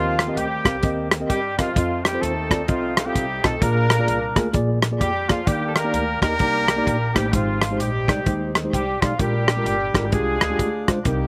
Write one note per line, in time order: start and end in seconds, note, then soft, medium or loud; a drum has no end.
0.00 0.30 D#2 medium
0.00 0.62 D#3 medium
0.00 0.34 F3 medium
0.00 0.36 A#3 medium
0.00 0.14 C4 medium
0.00 0.36 C4 medium
0.00 0.34 F4 medium
0.00 0.39 F4 medium
0.00 0.14 G4 medium
0.00 0.14 A#4 medium
0.00 0.14 D#5 medium
0.19 cross-stick loud
0.19 closed hi-hat medium
0.27 0.45 C4 medium
0.27 0.46 G4 medium
0.27 0.46 A#4 medium
0.27 0.46 D#5 medium
0.36 0.61 D2 medium
0.36 1.12 G3 medium
0.36 1.26 A#3 medium
0.36 1.26 C4 medium
0.36 1.12 G4 medium
0.36 closed hi-hat medium
0.65 0.80 C2 medium
0.65 0.74 C4 medium
0.65 0.75 G4 medium
0.65 0.75 A#4 medium
0.65 0.75 F5 medium
0.65 kick medium
0.65 cross-stick medium
0.65 closed hi-hat medium
0.83 1.23 D#2 medium
0.83 1.06 C4 medium
0.83 1.06 G4 medium
0.83 1.07 A#4 medium
0.83 1.07 D#5 medium
0.83 kick loud
0.83 closed hi-hat medium
1.11 cross-stick loud
1.11 closed hi-hat medium
1.20 1.38 C4 medium
1.20 1.38 G4 medium
1.20 1.39 A#4 medium
1.20 1.39 D#5 medium
1.29 1.54 G2 medium
1.29 1.56 G3 medium
1.29 1.56 G4 medium
1.29 kick medium
1.29 closed hi-hat medium
1.57 1.73 F#2 medium
1.57 2.01 F3 medium
1.57 2.22 A3 medium
1.57 1.68 C4 medium
1.57 2.22 C4 medium
1.57 1.74 F4 medium
1.57 2.01 F4 medium
1.57 1.68 G4 medium
1.57 1.68 A#4 medium
1.57 1.68 D#5 medium
1.57 kick medium
1.57 cross-stick medium
1.57 closed hi-hat medium
1.76 2.15 F2 medium
1.76 1.99 C4 medium
1.76 2.06 F4 medium
1.76 1.99 F4 medium
1.76 1.99 A4 medium
1.76 2.00 D#5 medium
1.76 kick loud
1.76 closed hi-hat medium
2.04 2.22 G3 medium
2.04 2.23 G4 medium
2.04 2.22 G4 medium
2.04 cross-stick loud
2.04 closed hi-hat medium
2.13 2.31 C4 medium
2.13 2.31 F4 medium
2.13 2.32 A4 medium
2.13 2.32 C5 medium
2.21 2.69 D#2 medium
2.21 2.68 A3 medium
2.21 2.68 C4 medium
2.21 3.05 D#4 medium
2.21 2.67 A4 medium
2.21 2.68 A4 medium
2.21 closed hi-hat medium
2.50 2.60 C4 medium
2.50 2.60 F4 medium
2.50 2.61 A4 medium
2.50 2.61 D5 medium
2.50 kick medium
2.50 cross-stick medium
2.50 closed hi-hat medium
2.68 3.08 C2 medium
2.68 3.03 F3 medium
2.68 3.43 A3 medium
2.68 2.92 C4 medium
2.68 3.06 C4 medium
2.68 3.03 F4 medium
2.68 3.08 F4 medium
2.68 2.92 F4 medium
2.68 2.92 A4 medium
2.68 2.92 D#5 medium
2.68 kick medium
2.68 closed hi-hat medium
2.97 cross-stick loud
2.97 closed hi-hat medium
3.05 3.43 G3 medium
3.05 3.24 C4 medium
3.05 3.58 C4 medium
3.05 3.58 D#4 medium
3.05 3.24 F4 medium
3.05 3.43 G4 medium
3.05 3.45 G4 loud
3.05 3.25 A4 medium
3.05 3.25 F5 medium
3.15 3.40 C2 medium
3.15 kick medium
3.15 closed hi-hat medium
3.43 3.59 B1 medium
3.43 3.60 A3 medium
3.43 3.53 C4 medium
3.43 3.54 F4 medium
3.43 3.60 A4 medium
3.43 3.63 A4 medium
3.43 3.54 A4 medium
3.43 3.54 D#5 medium
3.43 kick medium
3.43 cross-stick medium
3.43 closed hi-hat medium
3.61 4.01 A#1 medium
3.61 4.33 A#2 medium
3.61 3.85 A#3 medium
3.61 4.54 A#3 medium
3.61 4.51 D4 medium
3.61 3.85 F4 medium
3.61 4.51 F4 medium
3.61 3.85 G#4 medium
3.61 4.54 A#4 loud
3.61 4.55 A#4 medium
3.61 3.85 D5 medium
3.61 kick loud
3.61 closed hi-hat medium
3.90 cross-stick loud
3.90 closed hi-hat medium
3.99 4.17 A#3 medium
3.99 4.17 F4 medium
3.99 4.17 G#4 medium
3.99 4.18 D5 medium
4.08 4.32 C2 medium
4.08 closed hi-hat medium
4.36 4.51 D2 medium
4.36 4.46 A#3 medium
4.36 4.46 F4 medium
4.36 4.46 G#4 medium
4.36 4.47 A#4 medium
4.36 kick medium
4.36 cross-stick medium
4.36 closed hi-hat medium
4.53 4.94 A#1 medium
4.53 4.77 A#3 medium
4.53 4.77 F4 medium
4.53 4.78 G#4 medium
4.53 4.78 D5 medium
4.53 kick medium
4.53 closed hi-hat medium
4.82 cross-stick loud
4.82 closed hi-hat medium
4.92 5.10 A#3 medium
4.92 5.10 F4 medium
4.92 5.10 G#4 medium
4.92 5.10 D5 medium
5.00 5.47 F2 medium
5.00 5.27 G3 medium
5.00 5.27 G4 medium
5.00 5.31 G4 medium
5.00 kick medium
5.00 closed hi-hat medium
5.29 5.47 F3 medium
5.29 5.39 A#3 medium
5.29 5.47 F4 medium
5.29 5.39 F4 medium
5.29 5.49 F4 medium
5.29 5.39 G#4 medium
5.29 5.39 D5 medium
5.29 kick medium
5.29 cross-stick medium
5.29 closed hi-hat medium
5.46 5.87 D#2 loud
5.46 6.18 D#3 soft
5.46 5.76 G3 medium
5.46 5.70 A#3 medium
5.46 5.75 A#3 medium
5.46 5.75 D4 medium
5.46 5.70 D#4 medium
5.46 5.76 G4 medium
5.46 5.71 G4 medium
5.46 5.66 G4 medium
5.46 5.71 D5 medium
5.46 kick loud
5.46 closed hi-hat medium
5.67 5.77 A4 medium
5.75 6.20 A#3 medium
5.75 6.21 D4 medium
5.75 6.21 G4 medium
5.75 6.21 A#4 loud
5.75 6.20 A#4 medium
5.75 cross-stick loud
5.75 closed hi-hat medium
5.84 6.02 A#3 medium
5.84 6.02 D#4 medium
5.84 6.03 G4 medium
5.84 6.03 D5 medium
5.93 6.18 D2 medium
5.93 closed hi-hat medium
6.21 6.37 D#2 medium
6.21 7.11 A#3 medium
6.21 6.32 A#3 medium
6.21 7.11 D4 medium
6.21 6.32 D#4 medium
6.21 7.11 G4 medium
6.21 6.32 G4 medium
6.21 7.11 A#4 loud
6.21 7.17 A#4 loud
6.21 6.32 D#5 medium
6.21 kick medium
6.21 cross-stick medium
6.21 closed hi-hat medium
6.39 6.79 C2 medium
6.39 6.64 A#3 medium
6.39 6.64 D#4 medium
6.39 6.64 G4 medium
6.39 6.64 D5 medium
6.39 kick medium
6.39 closed hi-hat medium
6.68 cross-stick loud
6.68 closed hi-hat medium
6.76 6.95 A#3 medium
6.76 6.95 D#4 medium
6.76 6.96 G4 medium
6.76 6.96 D5 medium
6.87 7.11 A#1 medium
6.87 kick medium
6.87 closed hi-hat medium
7.13 7.31 A1 medium
7.13 7.31 G3 medium
7.13 7.25 A#3 medium
7.13 7.25 D#4 medium
7.13 7.31 G4 medium
7.13 7.35 G4 medium
7.13 7.26 G4 medium
7.13 7.26 C5 medium
7.13 kick medium
7.13 cross-stick loud
7.13 closed hi-hat medium
7.33 7.80 G#1 medium
7.33 8.05 G#2 medium
7.33 7.80 F3 medium
7.33 7.57 G#3 medium
7.33 7.80 C4 medium
7.33 7.57 D#4 medium
7.33 7.80 F4 medium
7.33 7.82 F4 medium
7.33 7.57 G4 medium
7.33 7.58 C5 medium
7.33 kick loud
7.33 closed hi-hat medium
7.62 cross-stick loud
7.62 closed hi-hat medium
7.71 7.89 G#3 medium
7.71 7.89 D#4 medium
7.71 7.89 G4 medium
7.71 7.90 C5 medium
7.80 8.04 A#1 medium
7.80 8.51 G3 medium
7.80 8.69 C4 medium
7.80 8.69 D#4 medium
7.80 8.51 G4 medium
7.80 8.55 G4 medium
7.80 closed hi-hat medium
8.08 8.23 C2 medium
8.08 8.18 G#3 medium
8.08 8.18 D#4 medium
8.08 8.19 G4 medium
8.08 8.19 D5 medium
8.08 kick medium
8.08 cross-stick medium
8.08 closed hi-hat medium
8.26 8.66 D#2 medium
8.26 8.49 G#3 medium
8.26 8.50 D#4 medium
8.26 8.50 G4 medium
8.26 8.50 C5 medium
8.26 kick medium
8.26 closed hi-hat medium
8.55 cross-stick loud
8.55 closed hi-hat medium
8.64 8.82 G#3 medium
8.64 8.82 D#4 medium
8.64 8.82 G4 medium
8.64 8.82 C5 medium
8.73 8.98 C2 medium
8.73 9.00 G3 medium
8.73 9.00 G4 medium
8.73 kick medium
8.73 closed hi-hat medium
9.01 9.17 B1 medium
9.01 9.19 F3 medium
9.01 9.11 G#3 medium
9.01 9.12 D#4 medium
9.01 9.19 F4 medium
9.01 9.23 F4 medium
9.01 9.12 G4 medium
9.01 9.12 D5 medium
9.01 kick medium
9.01 cross-stick medium
9.01 closed hi-hat medium
9.19 9.59 A#1 medium
9.19 9.91 A#2 medium
9.19 10.12 G3 medium
9.19 9.43 G#3 medium
9.19 9.43 D4 medium
9.19 10.09 D4 medium
9.19 9.43 F4 medium
9.19 10.12 G4 loud
9.19 10.07 G4 medium
9.19 9.43 A#4 medium
9.19 kick medium
9.19 closed hi-hat medium
9.48 cross-stick loud
9.48 closed hi-hat medium
9.57 9.75 G#3 medium
9.57 9.75 D4 medium
9.57 9.75 F4 medium
9.57 9.75 A#4 medium
9.65 9.90 G1 medium
9.65 closed hi-hat medium
9.94 10.10 G#1 medium
9.94 10.04 G#3 medium
9.94 10.05 D4 medium
9.94 10.05 F4 medium
9.94 10.05 A#4 medium
9.94 kick medium
9.94 cross-stick medium
9.94 closed hi-hat medium
10.08 10.16 G4 medium
10.12 10.37 C2 medium
10.12 10.88 G#3 medium
10.12 10.36 G#3 medium
10.12 11.01 D4 medium
10.12 10.36 D4 medium
10.12 11.01 F4 medium
10.12 10.37 F4 medium
10.12 10.37 G4 medium
10.12 10.88 G#4 medium
10.12 10.89 G#4 medium
10.12 kick medium
10.12 closed hi-hat medium
10.40 10.56 D2 medium
10.40 cross-stick loud
10.40 closed hi-hat medium
10.50 10.68 G#3 medium
10.50 10.68 D4 medium
10.50 10.69 F4 medium
10.50 10.69 G4 medium
10.59 10.83 D2 medium
10.59 kick medium
10.59 closed hi-hat medium
10.88 11.03 C#2 medium
10.88 10.97 G#3 medium
10.88 10.98 D4 medium
10.88 10.98 F4 medium
10.88 10.98 C5 medium
10.88 kick medium
10.88 cross-stick medium
10.88 closed hi-hat medium
11.05 11.27 C2 loud
11.05 11.27 C3 medium
11.05 11.27 G3 medium
11.05 11.27 A#3 medium
11.05 11.27 C4 medium
11.05 11.27 D#4 medium
11.05 11.27 G4 medium
11.05 11.27 A#4 medium
11.05 kick loud
11.05 closed hi-hat medium